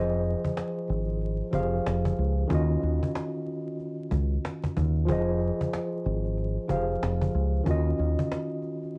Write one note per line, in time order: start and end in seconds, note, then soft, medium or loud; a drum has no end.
0.00 0.34 F1 loud
0.00 1.49 F3 medium
0.00 1.49 F4 medium
0.00 1.50 G#4 medium
0.00 1.51 C5 medium
0.00 1.52 D#5 medium
0.12 cajon slap soft
0.24 cajon slap soft
0.45 cajon bass loud
0.57 cajon slap loud
0.77 cajon slap soft
0.88 1.40 G#1 medium
0.88 cajon slap soft
1.09 cajon slap soft
1.21 cajon slap soft
1.51 1.79 F1 medium
1.51 2.49 F3 soft
1.51 2.50 F4 soft
1.51 1.61 G4 soft
1.51 2.50 C5 soft
1.51 2.51 F5 medium
1.51 cajon bass loud
1.59 2.53 G#4 soft
1.75 cajon slap soft
1.86 2.12 F1 medium
1.86 cajon slap loud
2.05 cajon bass loud
2.16 2.44 C#2 medium
2.16 cajon slap soft
2.38 cajon slap soft
2.47 2.76 D#2 loud
2.47 5.03 D#3 medium
2.47 5.04 C#4 medium
2.47 5.05 F4 medium
2.47 cajon bass loud
2.53 5.06 F#4 medium
2.53 5.06 D#5 medium
2.70 cajon slap soft
2.82 2.99 D#2 medium
2.82 cajon slap soft
3.03 cajon bass loud
3.15 cajon slap loud
3.35 cajon slap soft
3.46 cajon slap soft
3.67 cajon slap soft
3.79 cajon slap soft
4.00 cajon slap soft
4.11 4.37 C#2 medium
4.11 cajon bass medium
4.33 cajon slap soft
4.45 cajon slap loud
4.64 cajon bass loud
4.64 cajon slap soft
4.77 5.10 D#2 medium
4.77 cajon bass medium
4.96 cajon slap soft
5.05 5.50 F1 loud
5.05 6.65 F3 medium
5.05 6.66 F4 medium
5.05 6.66 G#4 medium
5.05 cajon bass loud
5.10 6.67 C5 medium
5.10 6.68 D#5 medium
5.28 cajon slap soft
5.40 cajon slap soft
5.61 cajon bass loud
5.73 cajon slap loud
5.93 cajon slap soft
6.04 6.56 G#1 medium
6.04 cajon slap soft
6.25 cajon slap soft
6.38 cajon slap soft
6.67 6.95 F1 medium
6.67 7.65 F3 soft
6.67 7.66 F4 soft
6.67 6.78 G4 soft
6.67 7.67 C5 soft
6.67 7.67 F5 medium
6.67 cajon bass loud
6.76 7.69 G#4 soft
6.92 cajon slap soft
7.03 7.28 F1 medium
7.03 cajon slap loud
7.22 cajon bass loud
7.32 7.60 C#2 medium
7.32 cajon slap soft
7.54 cajon slap soft
7.64 7.92 D#2 loud
7.64 8.98 D#3 medium
7.64 8.98 C#4 medium
7.64 8.98 F4 medium
7.64 cajon bass loud
7.69 8.98 F#4 medium
7.69 8.98 D#5 medium
7.86 cajon slap soft
7.98 8.15 D#2 medium
7.98 cajon slap soft
8.19 cajon bass medium
8.32 cajon slap loud
8.51 cajon slap soft
8.62 cajon slap soft
8.83 cajon slap soft